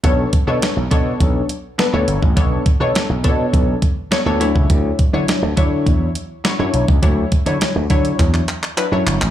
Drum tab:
HH |x-x-x-x-x-x-x-x-|x-x-x-x-x-x-x-x-|x-x-x-x-x-x-x-x-|x-xxx-xxx-x-x-x-|
CP |----------------|----------------|----------------|--------xxxxx-xx|
SD |----o-------o---|----o-------o---|----o-------o---|----o-----------|
BD |o-o---o-o------o|o-o---o-o-o----o|o-o---o-o------o|o-o---o-o-------|